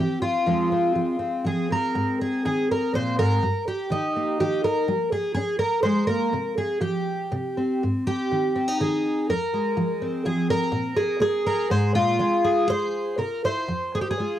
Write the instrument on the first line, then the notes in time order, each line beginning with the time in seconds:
twelve-string acoustic guitar
Already playing: E3 C4
0.00 G4
0.22 F4
0.46 F2 F3 G#3 C4
0.72 C4
0.95 F3
1.19 C4
1.45 F3 G#4
1.70 C4 A#4
1.95 G#2
2.21 G#4
2.45 D#3 G#4
2.71 A#4
2.94 A#2 C5
3.19 G#2 A#4
3.43 G2
3.68 G4
3.90 D#3 D#4
4.16 A#3
4.40 D#3 G4
4.64 A#4
4.88 G3
5.12 G#4
5.34 C#4 G#4
5.59 A#4
5.83 G#3 C5
6.07 A#3 A#4
6.33 C3
6.58 G#4
6.80 F3 G4
7.32 C3
7.57 C4
7.83 G#2
8.07 G4
8.31 D#3
8.56 C4
8.68 D#4
8.80 D#3 G#4
9.30 F2 A#4
9.54 G#3
9.77 F3
10.02 C4
10.25 F3 G#4
10.50 A#4
10.72 A#2
10.96 G#4
11.20 A#3 G#4
11.46 A#4
11.70 G#2 C5
11.94 A#2 F4
12.19 C3 G#3
12.44 G#4
12.67 G#3 C5
13.18 C3 A#4
13.44 E4 C5
13.68 F2
13.95 G#4
14.01 G4
14.11 G#4
14.19 G#3 F4